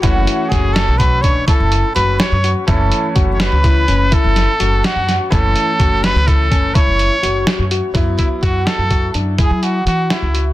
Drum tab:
HH |xxxxxxxxxxx|xxxxxxxxxxx|xxxxxxxxxxx|xxxxxxxxxxx|
SD |--oo-----o-|---o---o-oo|---o-----o-|---o-----o-|
BD |o-o-ooo----|o-o-o-o----|o-o-ooo----|ooo-o-o----|